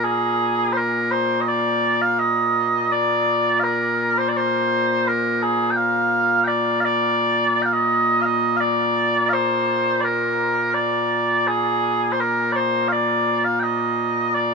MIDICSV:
0, 0, Header, 1, 2, 480
1, 0, Start_track
1, 0, Tempo, 714286
1, 35, Time_signature, 4, 2, 24, 8
1, 9771, End_track
2, 0, Start_track
2, 0, Title_t, "Bagpipes"
2, 0, Program_c, 0, 109
2, 0, Note_on_c, 0, 46, 89
2, 0, Note_on_c, 0, 58, 89
2, 28, Note_on_c, 0, 68, 97
2, 489, Note_off_c, 0, 68, 0
2, 489, Note_on_c, 0, 72, 92
2, 518, Note_off_c, 0, 72, 0
2, 518, Note_on_c, 0, 70, 92
2, 748, Note_off_c, 0, 70, 0
2, 748, Note_on_c, 0, 72, 88
2, 946, Note_off_c, 0, 72, 0
2, 946, Note_on_c, 0, 75, 76
2, 995, Note_off_c, 0, 75, 0
2, 995, Note_on_c, 0, 74, 102
2, 1355, Note_off_c, 0, 74, 0
2, 1355, Note_on_c, 0, 77, 98
2, 1471, Note_off_c, 0, 77, 0
2, 1471, Note_on_c, 0, 75, 99
2, 1963, Note_off_c, 0, 75, 0
2, 1963, Note_on_c, 0, 74, 109
2, 2418, Note_off_c, 0, 74, 0
2, 2418, Note_on_c, 0, 77, 89
2, 2442, Note_off_c, 0, 77, 0
2, 2442, Note_on_c, 0, 70, 89
2, 2809, Note_off_c, 0, 70, 0
2, 2809, Note_on_c, 0, 72, 88
2, 2879, Note_off_c, 0, 72, 0
2, 2879, Note_on_c, 0, 74, 74
2, 2935, Note_off_c, 0, 74, 0
2, 2935, Note_on_c, 0, 72, 100
2, 3411, Note_off_c, 0, 72, 0
2, 3411, Note_on_c, 0, 70, 88
2, 3647, Note_off_c, 0, 70, 0
2, 3647, Note_on_c, 0, 68, 94
2, 3836, Note_off_c, 0, 68, 0
2, 3836, Note_on_c, 0, 79, 82
2, 3873, Note_off_c, 0, 79, 0
2, 3873, Note_on_c, 0, 77, 99
2, 4329, Note_off_c, 0, 77, 0
2, 4329, Note_on_c, 0, 79, 89
2, 4351, Note_off_c, 0, 79, 0
2, 4351, Note_on_c, 0, 74, 89
2, 4572, Note_off_c, 0, 74, 0
2, 4572, Note_on_c, 0, 77, 110
2, 4601, Note_off_c, 0, 77, 0
2, 4601, Note_on_c, 0, 74, 110
2, 5122, Note_off_c, 0, 74, 0
2, 5122, Note_on_c, 0, 79, 77
2, 5145, Note_off_c, 0, 79, 0
2, 5145, Note_on_c, 0, 77, 77
2, 5192, Note_off_c, 0, 77, 0
2, 5192, Note_on_c, 0, 75, 111
2, 5522, Note_off_c, 0, 75, 0
2, 5522, Note_on_c, 0, 77, 101
2, 5545, Note_off_c, 0, 77, 0
2, 5545, Note_on_c, 0, 75, 101
2, 5755, Note_off_c, 0, 75, 0
2, 5755, Note_on_c, 0, 77, 103
2, 5781, Note_off_c, 0, 77, 0
2, 5781, Note_on_c, 0, 74, 103
2, 6245, Note_off_c, 0, 74, 0
2, 6245, Note_on_c, 0, 77, 92
2, 6269, Note_off_c, 0, 77, 0
2, 6269, Note_on_c, 0, 72, 92
2, 6723, Note_off_c, 0, 72, 0
2, 6723, Note_on_c, 0, 74, 89
2, 6748, Note_off_c, 0, 74, 0
2, 6748, Note_on_c, 0, 70, 89
2, 7217, Note_off_c, 0, 70, 0
2, 7217, Note_on_c, 0, 74, 89
2, 7710, Note_off_c, 0, 74, 0
2, 7710, Note_on_c, 0, 68, 98
2, 8146, Note_off_c, 0, 68, 0
2, 8146, Note_on_c, 0, 72, 68
2, 8200, Note_off_c, 0, 72, 0
2, 8200, Note_on_c, 0, 70, 84
2, 8414, Note_off_c, 0, 70, 0
2, 8414, Note_on_c, 0, 74, 88
2, 8439, Note_off_c, 0, 74, 0
2, 8439, Note_on_c, 0, 72, 88
2, 8656, Note_off_c, 0, 72, 0
2, 8656, Note_on_c, 0, 77, 92
2, 8684, Note_off_c, 0, 77, 0
2, 8684, Note_on_c, 0, 74, 92
2, 9034, Note_off_c, 0, 74, 0
2, 9034, Note_on_c, 0, 77, 92
2, 9137, Note_off_c, 0, 77, 0
2, 9137, Note_on_c, 0, 79, 89
2, 9160, Note_off_c, 0, 79, 0
2, 9160, Note_on_c, 0, 75, 89
2, 9640, Note_off_c, 0, 75, 0
2, 9640, Note_on_c, 0, 74, 102
2, 9771, Note_off_c, 0, 46, 0
2, 9771, Note_off_c, 0, 58, 0
2, 9771, Note_off_c, 0, 74, 0
2, 9771, End_track
0, 0, End_of_file